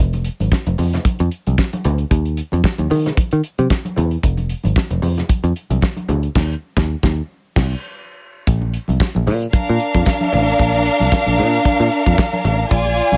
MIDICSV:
0, 0, Header, 1, 5, 480
1, 0, Start_track
1, 0, Tempo, 530504
1, 1908, Time_signature, 4, 2, 24, 8
1, 11919, End_track
2, 0, Start_track
2, 0, Title_t, "Violin section"
2, 0, Program_c, 0, 48
2, 8623, Note_on_c, 0, 62, 93
2, 8623, Note_on_c, 0, 70, 83
2, 8624, Note_on_c, 0, 77, 103
2, 11467, Note_off_c, 0, 62, 0
2, 11467, Note_off_c, 0, 70, 0
2, 11467, Note_off_c, 0, 77, 0
2, 11497, Note_on_c, 0, 74, 100
2, 11500, Note_on_c, 0, 65, 100
2, 11500, Note_on_c, 0, 80, 110
2, 11919, Note_off_c, 0, 65, 0
2, 11919, Note_off_c, 0, 74, 0
2, 11919, Note_off_c, 0, 80, 0
2, 11919, End_track
3, 0, Start_track
3, 0, Title_t, "Picked electric bass"
3, 0, Program_c, 1, 34
3, 0, Note_on_c, 1, 29, 118
3, 251, Note_off_c, 1, 29, 0
3, 366, Note_on_c, 1, 32, 76
3, 439, Note_off_c, 1, 32, 0
3, 604, Note_on_c, 1, 29, 93
3, 677, Note_off_c, 1, 29, 0
3, 713, Note_on_c, 1, 41, 101
3, 879, Note_off_c, 1, 41, 0
3, 1086, Note_on_c, 1, 41, 93
3, 1159, Note_off_c, 1, 41, 0
3, 1332, Note_on_c, 1, 36, 80
3, 1402, Note_off_c, 1, 36, 0
3, 1676, Note_on_c, 1, 38, 100
3, 1841, Note_off_c, 1, 38, 0
3, 1908, Note_on_c, 1, 39, 105
3, 2170, Note_off_c, 1, 39, 0
3, 2288, Note_on_c, 1, 41, 85
3, 2360, Note_off_c, 1, 41, 0
3, 2526, Note_on_c, 1, 39, 78
3, 2598, Note_off_c, 1, 39, 0
3, 2633, Note_on_c, 1, 51, 99
3, 2798, Note_off_c, 1, 51, 0
3, 3010, Note_on_c, 1, 51, 83
3, 3081, Note_off_c, 1, 51, 0
3, 3246, Note_on_c, 1, 48, 79
3, 3318, Note_off_c, 1, 48, 0
3, 3599, Note_on_c, 1, 40, 89
3, 3762, Note_off_c, 1, 40, 0
3, 3833, Note_on_c, 1, 29, 102
3, 4092, Note_off_c, 1, 29, 0
3, 4205, Note_on_c, 1, 32, 90
3, 4277, Note_off_c, 1, 32, 0
3, 4443, Note_on_c, 1, 29, 90
3, 4516, Note_off_c, 1, 29, 0
3, 4544, Note_on_c, 1, 41, 98
3, 4712, Note_off_c, 1, 41, 0
3, 4918, Note_on_c, 1, 41, 94
3, 4993, Note_off_c, 1, 41, 0
3, 5161, Note_on_c, 1, 36, 81
3, 5234, Note_off_c, 1, 36, 0
3, 5508, Note_on_c, 1, 38, 89
3, 5675, Note_off_c, 1, 38, 0
3, 5750, Note_on_c, 1, 39, 96
3, 5917, Note_off_c, 1, 39, 0
3, 6125, Note_on_c, 1, 39, 97
3, 6281, Note_off_c, 1, 39, 0
3, 6363, Note_on_c, 1, 39, 83
3, 6520, Note_off_c, 1, 39, 0
3, 6843, Note_on_c, 1, 36, 91
3, 7000, Note_off_c, 1, 36, 0
3, 7667, Note_on_c, 1, 34, 95
3, 7928, Note_off_c, 1, 34, 0
3, 8042, Note_on_c, 1, 36, 70
3, 8115, Note_off_c, 1, 36, 0
3, 8288, Note_on_c, 1, 34, 90
3, 8390, Note_on_c, 1, 46, 100
3, 8404, Note_off_c, 1, 34, 0
3, 8556, Note_off_c, 1, 46, 0
3, 8771, Note_on_c, 1, 46, 83
3, 8841, Note_off_c, 1, 46, 0
3, 9001, Note_on_c, 1, 41, 77
3, 9075, Note_off_c, 1, 41, 0
3, 9350, Note_on_c, 1, 33, 85
3, 9516, Note_off_c, 1, 33, 0
3, 9588, Note_on_c, 1, 34, 95
3, 9849, Note_off_c, 1, 34, 0
3, 9962, Note_on_c, 1, 36, 83
3, 10035, Note_off_c, 1, 36, 0
3, 10201, Note_on_c, 1, 34, 95
3, 10305, Note_on_c, 1, 46, 102
3, 10318, Note_off_c, 1, 34, 0
3, 10473, Note_off_c, 1, 46, 0
3, 10675, Note_on_c, 1, 46, 88
3, 10751, Note_off_c, 1, 46, 0
3, 10917, Note_on_c, 1, 41, 79
3, 10991, Note_off_c, 1, 41, 0
3, 11263, Note_on_c, 1, 33, 99
3, 11431, Note_off_c, 1, 33, 0
3, 11501, Note_on_c, 1, 34, 105
3, 11763, Note_off_c, 1, 34, 0
3, 11876, Note_on_c, 1, 36, 80
3, 11919, Note_off_c, 1, 36, 0
3, 11919, End_track
4, 0, Start_track
4, 0, Title_t, "Muted picked electric bass strokes"
4, 952, Note_on_c, 9, 29, 45
4, 1042, Note_off_c, 9, 29, 0
4, 2874, Note_on_c, 9, 29, 49
4, 2964, Note_off_c, 9, 29, 0
4, 4791, Note_on_c, 9, 29, 49
4, 4882, Note_off_c, 9, 29, 0
4, 8627, Note_on_c, 9, 29, 45
4, 8717, Note_off_c, 9, 29, 0
4, 10546, Note_on_c, 9, 29, 46
4, 10636, Note_off_c, 9, 29, 0
4, 11919, End_track
5, 0, Start_track
5, 0, Title_t, "Drums"
5, 0, Note_on_c, 9, 62, 35
5, 86, Note_off_c, 9, 62, 0
5, 118, Note_on_c, 9, 42, 39
5, 123, Note_on_c, 9, 62, 36
5, 208, Note_off_c, 9, 42, 0
5, 214, Note_off_c, 9, 62, 0
5, 222, Note_on_c, 9, 42, 72
5, 312, Note_off_c, 9, 42, 0
5, 363, Note_on_c, 9, 63, 57
5, 374, Note_on_c, 9, 42, 44
5, 454, Note_off_c, 9, 63, 0
5, 465, Note_off_c, 9, 42, 0
5, 468, Note_on_c, 9, 36, 112
5, 480, Note_on_c, 9, 38, 101
5, 558, Note_off_c, 9, 36, 0
5, 571, Note_off_c, 9, 38, 0
5, 601, Note_on_c, 9, 42, 44
5, 603, Note_on_c, 9, 62, 31
5, 603, Note_on_c, 9, 63, 67
5, 691, Note_off_c, 9, 42, 0
5, 693, Note_off_c, 9, 62, 0
5, 693, Note_off_c, 9, 63, 0
5, 708, Note_on_c, 9, 64, 76
5, 709, Note_on_c, 9, 46, 54
5, 798, Note_off_c, 9, 64, 0
5, 799, Note_off_c, 9, 46, 0
5, 844, Note_on_c, 9, 42, 45
5, 847, Note_on_c, 9, 38, 34
5, 850, Note_on_c, 9, 64, 69
5, 934, Note_off_c, 9, 42, 0
5, 938, Note_off_c, 9, 38, 0
5, 941, Note_off_c, 9, 64, 0
5, 949, Note_on_c, 9, 36, 109
5, 949, Note_on_c, 9, 62, 35
5, 949, Note_on_c, 9, 63, 53
5, 951, Note_on_c, 9, 42, 88
5, 1039, Note_off_c, 9, 62, 0
5, 1039, Note_off_c, 9, 63, 0
5, 1040, Note_off_c, 9, 36, 0
5, 1042, Note_off_c, 9, 42, 0
5, 1077, Note_on_c, 9, 42, 49
5, 1167, Note_off_c, 9, 42, 0
5, 1189, Note_on_c, 9, 42, 55
5, 1279, Note_off_c, 9, 42, 0
5, 1327, Note_on_c, 9, 42, 39
5, 1329, Note_on_c, 9, 63, 62
5, 1417, Note_off_c, 9, 42, 0
5, 1419, Note_off_c, 9, 63, 0
5, 1428, Note_on_c, 9, 62, 33
5, 1431, Note_on_c, 9, 36, 100
5, 1437, Note_on_c, 9, 38, 94
5, 1518, Note_off_c, 9, 62, 0
5, 1521, Note_off_c, 9, 36, 0
5, 1528, Note_off_c, 9, 38, 0
5, 1565, Note_on_c, 9, 42, 47
5, 1567, Note_on_c, 9, 62, 32
5, 1567, Note_on_c, 9, 63, 73
5, 1655, Note_off_c, 9, 42, 0
5, 1658, Note_off_c, 9, 62, 0
5, 1658, Note_off_c, 9, 63, 0
5, 1669, Note_on_c, 9, 42, 69
5, 1671, Note_on_c, 9, 64, 91
5, 1759, Note_off_c, 9, 42, 0
5, 1762, Note_off_c, 9, 64, 0
5, 1794, Note_on_c, 9, 42, 36
5, 1885, Note_off_c, 9, 42, 0
5, 1909, Note_on_c, 9, 36, 89
5, 1910, Note_on_c, 9, 42, 87
5, 2000, Note_off_c, 9, 36, 0
5, 2001, Note_off_c, 9, 42, 0
5, 2039, Note_on_c, 9, 42, 37
5, 2130, Note_off_c, 9, 42, 0
5, 2146, Note_on_c, 9, 42, 70
5, 2237, Note_off_c, 9, 42, 0
5, 2279, Note_on_c, 9, 63, 69
5, 2296, Note_on_c, 9, 42, 41
5, 2369, Note_off_c, 9, 63, 0
5, 2387, Note_off_c, 9, 42, 0
5, 2387, Note_on_c, 9, 36, 104
5, 2387, Note_on_c, 9, 62, 39
5, 2400, Note_on_c, 9, 38, 112
5, 2478, Note_off_c, 9, 36, 0
5, 2478, Note_off_c, 9, 62, 0
5, 2491, Note_off_c, 9, 38, 0
5, 2518, Note_on_c, 9, 42, 47
5, 2518, Note_on_c, 9, 62, 28
5, 2518, Note_on_c, 9, 63, 73
5, 2608, Note_off_c, 9, 62, 0
5, 2608, Note_off_c, 9, 63, 0
5, 2609, Note_off_c, 9, 42, 0
5, 2624, Note_on_c, 9, 64, 78
5, 2632, Note_on_c, 9, 46, 54
5, 2714, Note_off_c, 9, 64, 0
5, 2722, Note_off_c, 9, 46, 0
5, 2769, Note_on_c, 9, 42, 48
5, 2770, Note_on_c, 9, 64, 78
5, 2772, Note_on_c, 9, 38, 32
5, 2859, Note_off_c, 9, 42, 0
5, 2860, Note_off_c, 9, 64, 0
5, 2863, Note_off_c, 9, 38, 0
5, 2865, Note_on_c, 9, 63, 51
5, 2871, Note_on_c, 9, 36, 110
5, 2877, Note_on_c, 9, 42, 89
5, 2955, Note_off_c, 9, 63, 0
5, 2962, Note_off_c, 9, 36, 0
5, 2968, Note_off_c, 9, 42, 0
5, 2998, Note_on_c, 9, 42, 46
5, 3088, Note_off_c, 9, 42, 0
5, 3108, Note_on_c, 9, 42, 58
5, 3199, Note_off_c, 9, 42, 0
5, 3244, Note_on_c, 9, 42, 41
5, 3247, Note_on_c, 9, 63, 63
5, 3334, Note_off_c, 9, 42, 0
5, 3338, Note_off_c, 9, 63, 0
5, 3347, Note_on_c, 9, 62, 35
5, 3351, Note_on_c, 9, 36, 101
5, 3358, Note_on_c, 9, 38, 94
5, 3437, Note_off_c, 9, 62, 0
5, 3441, Note_off_c, 9, 36, 0
5, 3448, Note_off_c, 9, 38, 0
5, 3482, Note_on_c, 9, 63, 68
5, 3488, Note_on_c, 9, 42, 45
5, 3572, Note_off_c, 9, 63, 0
5, 3579, Note_off_c, 9, 42, 0
5, 3586, Note_on_c, 9, 64, 86
5, 3596, Note_on_c, 9, 42, 68
5, 3676, Note_off_c, 9, 64, 0
5, 3687, Note_off_c, 9, 42, 0
5, 3720, Note_on_c, 9, 42, 34
5, 3811, Note_off_c, 9, 42, 0
5, 3829, Note_on_c, 9, 62, 33
5, 3831, Note_on_c, 9, 36, 90
5, 3836, Note_on_c, 9, 42, 85
5, 3920, Note_off_c, 9, 62, 0
5, 3921, Note_off_c, 9, 36, 0
5, 3927, Note_off_c, 9, 42, 0
5, 3957, Note_on_c, 9, 62, 36
5, 3963, Note_on_c, 9, 42, 40
5, 4048, Note_off_c, 9, 62, 0
5, 4053, Note_off_c, 9, 42, 0
5, 4067, Note_on_c, 9, 42, 68
5, 4157, Note_off_c, 9, 42, 0
5, 4194, Note_on_c, 9, 63, 63
5, 4217, Note_on_c, 9, 42, 43
5, 4284, Note_off_c, 9, 63, 0
5, 4307, Note_off_c, 9, 42, 0
5, 4307, Note_on_c, 9, 36, 113
5, 4322, Note_on_c, 9, 38, 109
5, 4398, Note_off_c, 9, 36, 0
5, 4412, Note_off_c, 9, 38, 0
5, 4438, Note_on_c, 9, 63, 71
5, 4439, Note_on_c, 9, 42, 48
5, 4528, Note_off_c, 9, 63, 0
5, 4529, Note_off_c, 9, 42, 0
5, 4544, Note_on_c, 9, 64, 78
5, 4555, Note_on_c, 9, 46, 59
5, 4634, Note_off_c, 9, 64, 0
5, 4646, Note_off_c, 9, 46, 0
5, 4684, Note_on_c, 9, 64, 67
5, 4685, Note_on_c, 9, 42, 44
5, 4688, Note_on_c, 9, 38, 30
5, 4774, Note_off_c, 9, 64, 0
5, 4775, Note_off_c, 9, 42, 0
5, 4778, Note_off_c, 9, 38, 0
5, 4786, Note_on_c, 9, 62, 28
5, 4786, Note_on_c, 9, 63, 48
5, 4790, Note_on_c, 9, 36, 109
5, 4793, Note_on_c, 9, 42, 85
5, 4876, Note_off_c, 9, 62, 0
5, 4876, Note_off_c, 9, 63, 0
5, 4880, Note_off_c, 9, 36, 0
5, 4883, Note_off_c, 9, 42, 0
5, 4920, Note_on_c, 9, 42, 44
5, 4923, Note_on_c, 9, 62, 36
5, 5010, Note_off_c, 9, 42, 0
5, 5014, Note_off_c, 9, 62, 0
5, 5031, Note_on_c, 9, 42, 52
5, 5122, Note_off_c, 9, 42, 0
5, 5164, Note_on_c, 9, 42, 44
5, 5164, Note_on_c, 9, 63, 66
5, 5254, Note_off_c, 9, 42, 0
5, 5255, Note_off_c, 9, 63, 0
5, 5260, Note_on_c, 9, 62, 35
5, 5270, Note_on_c, 9, 36, 104
5, 5279, Note_on_c, 9, 38, 105
5, 5350, Note_off_c, 9, 62, 0
5, 5360, Note_off_c, 9, 36, 0
5, 5369, Note_off_c, 9, 38, 0
5, 5397, Note_on_c, 9, 63, 65
5, 5405, Note_on_c, 9, 42, 41
5, 5487, Note_off_c, 9, 63, 0
5, 5495, Note_off_c, 9, 42, 0
5, 5506, Note_on_c, 9, 64, 86
5, 5513, Note_on_c, 9, 42, 66
5, 5596, Note_off_c, 9, 64, 0
5, 5603, Note_off_c, 9, 42, 0
5, 5637, Note_on_c, 9, 42, 38
5, 5728, Note_off_c, 9, 42, 0
5, 5749, Note_on_c, 9, 36, 98
5, 5750, Note_on_c, 9, 49, 72
5, 5758, Note_on_c, 9, 38, 92
5, 5840, Note_off_c, 9, 36, 0
5, 5840, Note_off_c, 9, 49, 0
5, 5849, Note_off_c, 9, 38, 0
5, 6123, Note_on_c, 9, 36, 99
5, 6134, Note_on_c, 9, 38, 106
5, 6213, Note_off_c, 9, 36, 0
5, 6224, Note_off_c, 9, 38, 0
5, 6363, Note_on_c, 9, 36, 105
5, 6370, Note_on_c, 9, 38, 99
5, 6453, Note_off_c, 9, 36, 0
5, 6460, Note_off_c, 9, 38, 0
5, 6842, Note_on_c, 9, 36, 110
5, 6844, Note_on_c, 9, 49, 78
5, 6852, Note_on_c, 9, 38, 102
5, 6933, Note_off_c, 9, 36, 0
5, 6934, Note_off_c, 9, 49, 0
5, 6942, Note_off_c, 9, 38, 0
5, 7665, Note_on_c, 9, 36, 99
5, 7670, Note_on_c, 9, 42, 78
5, 7756, Note_off_c, 9, 36, 0
5, 7761, Note_off_c, 9, 42, 0
5, 7794, Note_on_c, 9, 62, 36
5, 7884, Note_off_c, 9, 62, 0
5, 7904, Note_on_c, 9, 42, 66
5, 7995, Note_off_c, 9, 42, 0
5, 8033, Note_on_c, 9, 63, 59
5, 8054, Note_on_c, 9, 42, 38
5, 8123, Note_off_c, 9, 63, 0
5, 8143, Note_on_c, 9, 54, 95
5, 8144, Note_off_c, 9, 42, 0
5, 8144, Note_on_c, 9, 36, 100
5, 8145, Note_on_c, 9, 62, 38
5, 8155, Note_on_c, 9, 38, 106
5, 8234, Note_off_c, 9, 36, 0
5, 8234, Note_off_c, 9, 54, 0
5, 8236, Note_off_c, 9, 62, 0
5, 8246, Note_off_c, 9, 38, 0
5, 8276, Note_on_c, 9, 62, 32
5, 8276, Note_on_c, 9, 63, 63
5, 8367, Note_off_c, 9, 62, 0
5, 8367, Note_off_c, 9, 63, 0
5, 8385, Note_on_c, 9, 64, 75
5, 8391, Note_on_c, 9, 46, 56
5, 8476, Note_off_c, 9, 64, 0
5, 8481, Note_off_c, 9, 46, 0
5, 8522, Note_on_c, 9, 42, 41
5, 8613, Note_off_c, 9, 42, 0
5, 8625, Note_on_c, 9, 63, 50
5, 8626, Note_on_c, 9, 36, 102
5, 8630, Note_on_c, 9, 42, 85
5, 8716, Note_off_c, 9, 36, 0
5, 8716, Note_off_c, 9, 63, 0
5, 8720, Note_off_c, 9, 42, 0
5, 8750, Note_on_c, 9, 42, 37
5, 8840, Note_off_c, 9, 42, 0
5, 8865, Note_on_c, 9, 42, 58
5, 8955, Note_off_c, 9, 42, 0
5, 8998, Note_on_c, 9, 36, 80
5, 9000, Note_on_c, 9, 42, 46
5, 9000, Note_on_c, 9, 63, 68
5, 9089, Note_off_c, 9, 36, 0
5, 9090, Note_off_c, 9, 42, 0
5, 9090, Note_off_c, 9, 63, 0
5, 9098, Note_on_c, 9, 54, 103
5, 9102, Note_on_c, 9, 62, 33
5, 9105, Note_on_c, 9, 36, 113
5, 9113, Note_on_c, 9, 38, 86
5, 9189, Note_off_c, 9, 54, 0
5, 9193, Note_off_c, 9, 62, 0
5, 9196, Note_off_c, 9, 36, 0
5, 9204, Note_off_c, 9, 38, 0
5, 9234, Note_on_c, 9, 63, 72
5, 9325, Note_off_c, 9, 63, 0
5, 9342, Note_on_c, 9, 64, 89
5, 9350, Note_on_c, 9, 42, 59
5, 9433, Note_off_c, 9, 64, 0
5, 9441, Note_off_c, 9, 42, 0
5, 9471, Note_on_c, 9, 42, 39
5, 9561, Note_off_c, 9, 42, 0
5, 9583, Note_on_c, 9, 62, 39
5, 9585, Note_on_c, 9, 36, 93
5, 9589, Note_on_c, 9, 42, 74
5, 9674, Note_off_c, 9, 62, 0
5, 9676, Note_off_c, 9, 36, 0
5, 9680, Note_off_c, 9, 42, 0
5, 9713, Note_on_c, 9, 62, 39
5, 9717, Note_on_c, 9, 42, 36
5, 9803, Note_off_c, 9, 62, 0
5, 9808, Note_off_c, 9, 42, 0
5, 9822, Note_on_c, 9, 42, 72
5, 9912, Note_off_c, 9, 42, 0
5, 9949, Note_on_c, 9, 63, 60
5, 9966, Note_on_c, 9, 42, 42
5, 10040, Note_off_c, 9, 63, 0
5, 10056, Note_off_c, 9, 42, 0
5, 10061, Note_on_c, 9, 36, 109
5, 10062, Note_on_c, 9, 54, 99
5, 10075, Note_on_c, 9, 38, 111
5, 10152, Note_off_c, 9, 36, 0
5, 10153, Note_off_c, 9, 54, 0
5, 10165, Note_off_c, 9, 38, 0
5, 10190, Note_on_c, 9, 62, 30
5, 10190, Note_on_c, 9, 63, 73
5, 10196, Note_on_c, 9, 42, 31
5, 10281, Note_off_c, 9, 62, 0
5, 10281, Note_off_c, 9, 63, 0
5, 10286, Note_off_c, 9, 42, 0
5, 10298, Note_on_c, 9, 64, 71
5, 10306, Note_on_c, 9, 46, 55
5, 10388, Note_off_c, 9, 64, 0
5, 10397, Note_off_c, 9, 46, 0
5, 10440, Note_on_c, 9, 42, 43
5, 10530, Note_off_c, 9, 42, 0
5, 10540, Note_on_c, 9, 62, 34
5, 10540, Note_on_c, 9, 63, 50
5, 10543, Note_on_c, 9, 36, 105
5, 10546, Note_on_c, 9, 42, 90
5, 10630, Note_off_c, 9, 62, 0
5, 10630, Note_off_c, 9, 63, 0
5, 10634, Note_off_c, 9, 36, 0
5, 10637, Note_off_c, 9, 42, 0
5, 10679, Note_on_c, 9, 62, 29
5, 10769, Note_off_c, 9, 62, 0
5, 10784, Note_on_c, 9, 42, 58
5, 10874, Note_off_c, 9, 42, 0
5, 10915, Note_on_c, 9, 36, 87
5, 10917, Note_on_c, 9, 42, 42
5, 10921, Note_on_c, 9, 63, 71
5, 11005, Note_off_c, 9, 36, 0
5, 11008, Note_off_c, 9, 42, 0
5, 11011, Note_off_c, 9, 63, 0
5, 11018, Note_on_c, 9, 54, 106
5, 11022, Note_on_c, 9, 36, 108
5, 11030, Note_on_c, 9, 38, 103
5, 11108, Note_off_c, 9, 54, 0
5, 11112, Note_off_c, 9, 36, 0
5, 11120, Note_off_c, 9, 38, 0
5, 11155, Note_on_c, 9, 42, 37
5, 11157, Note_on_c, 9, 62, 33
5, 11157, Note_on_c, 9, 63, 66
5, 11246, Note_off_c, 9, 42, 0
5, 11247, Note_off_c, 9, 62, 0
5, 11247, Note_off_c, 9, 63, 0
5, 11259, Note_on_c, 9, 64, 86
5, 11263, Note_on_c, 9, 42, 70
5, 11349, Note_off_c, 9, 64, 0
5, 11354, Note_off_c, 9, 42, 0
5, 11383, Note_on_c, 9, 42, 34
5, 11473, Note_off_c, 9, 42, 0
5, 11500, Note_on_c, 9, 36, 112
5, 11505, Note_on_c, 9, 42, 85
5, 11591, Note_off_c, 9, 36, 0
5, 11595, Note_off_c, 9, 42, 0
5, 11627, Note_on_c, 9, 62, 40
5, 11717, Note_off_c, 9, 62, 0
5, 11738, Note_on_c, 9, 42, 76
5, 11829, Note_off_c, 9, 42, 0
5, 11868, Note_on_c, 9, 63, 64
5, 11891, Note_on_c, 9, 42, 42
5, 11919, Note_off_c, 9, 42, 0
5, 11919, Note_off_c, 9, 63, 0
5, 11919, End_track
0, 0, End_of_file